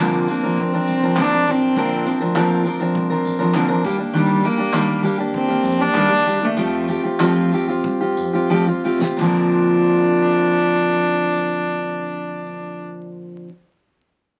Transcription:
0.00 C2 A#2 D3 F3 A#3 C4 D4 A#4
0.28 D2 F3 C4 D4 A#4, tambourine
0.43 F3 C4 D4 A#4
0.58 C4, kick
0.73 F3 C4 D4 A#4
0.87 C2, tambourine
1.03 F3 C4 D4 A#4
1.16 A#1 A#2 D3 F3 C4 D4 A#4, clap, tambourine
1.22 D4
1.32 F3 C4 D4 A#4
1.47 A1 F3 C4 D4 A#4, tambourine
1.51 C4
1.76 A#1 A#2 D3 F3 C4 D4 A#4, kick
2.06 F3 C4 D4 A#4, tambourine
2.20 D2 F3 C4 D4 A#4
2.35 A#2 D3 F3 C4 D4 A#4, clap, tambourine
2.65 F3 C4 D4 A#4, tambourine
2.80 F3 C4 D4 A#4
2.95 C2, kick
3.10 F3 C4 D4 A#4
3.25 A#1, tambourine
3.39 F3 C4 D4 A#4
3.54 A#2 D3 F3 C4 D4 A#4, clap, tambourine
3.68 F3 C4 D4 A#4
3.84 D#2 G3 A#3 D4 G4, kick, tambourine
3.98 A#3 D4 G4
4.13 D#3 G3 A#3 D4 G4
4.43 G3 A#3 D4 G4, tambourine
4.58 A#3 D4 G4
4.73 D2 D#3 G3 A#3 D4 G4, clap, tambourine
5.02 D#2 G3 A#3 D4 G4, tambourine
5.18 A#3 D4 G4
5.34 C4, kick
5.48 A#3 D4 G4
5.63 F2, tambourine
5.79 A#3 D4 G4
5.94 D#2 D#3 G3 A#3 D4 G4, clap, tambourine
6.09 A#3 D4 G4
6.25 D#2 G3 A#3 D4 G4, tambourine
6.40 A#3 D4 G4
6.44 A3
6.57 F2 F3 A3 C4 F4 G4, kick
6.88 A3 C4 F4 G4, tambourine
7.04 F2 C4 F4 G4
7.19 F3 A3 C4 F4 G4, clap, tambourine
7.52 A3 C4 F4 G4, tambourine
7.68 C4 F4 G4
7.84 G2, kick
8.01 C4 F4 G4
8.17 F2, tambourine
8.33 C4 F4 G4
8.49 F3 A3 C4 F4 G4, tambourine
8.67 C4 F4 G4
8.84 A1 A3 C4 F4 G4
9.01 C4 F4 G4, snare
9.17 A#1 A#2 D3 D4, kick, crash, tambourine
9.21 F3 C4 D4 A#4

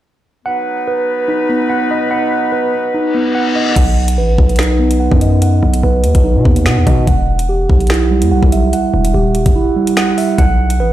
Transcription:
0.45 F#3 B3 D#4 B4 F#5
0.88 B4
1.28 D#4
1.49 B3
1.70 F#5
1.91 D#5
2.11 F#5
2.52 B4
2.94 D#4, reverse cymbal
3.15 B3
3.35 F#5
3.56 D#5
3.76 B1 F#5, kick, closed hi-hat, crash
4.08 closed hi-hat
4.18 A1 B4
4.38 B1, kick
4.49 closed hi-hat
4.56 finger snap, snare, closed hi-hat
4.60 D#4, closed hi-hat
4.79 B3
4.91 closed hi-hat
5.00 F#5
5.11 F#2, kick
5.21 D#5, closed hi-hat
5.42 F#5, closed hi-hat
5.63 B1
5.74 closed hi-hat
5.83 B1 B4
6.04 D#2, closed hi-hat
6.15 B1, kick, closed hi-hat
6.24 D#4
6.36 B2
6.45 D#2 B3, kick
6.56 closed hi-hat
6.66 B2 F#5, finger snap, snare
6.77 D#2
6.87 B2 D#5, kick, closed hi-hat
7.07 E1 F#5, kick, closed hi-hat
7.39 closed hi-hat
7.49 G4
7.70 B1, kick
7.81 closed hi-hat
7.87 E4, finger snap, snare, closed hi-hat
7.94 closed hi-hat
8.11 G3
8.22 E2, closed hi-hat
8.31 B1 F#5
8.43 B1, kick
8.52 E5, closed hi-hat
8.73 F#5, closed hi-hat
8.94 E1
9.05 closed hi-hat
9.14 D#1 G4
9.35 closed hi-hat
9.46 E1, kick, closed hi-hat
9.55 E4
9.76 G3
9.87 closed hi-hat
9.97 F#5, finger snap, snare
10.18 E5, open hi-hat
10.38 B1 F#5, kick, closed hi-hat
10.70 closed hi-hat
10.80 A1 B4

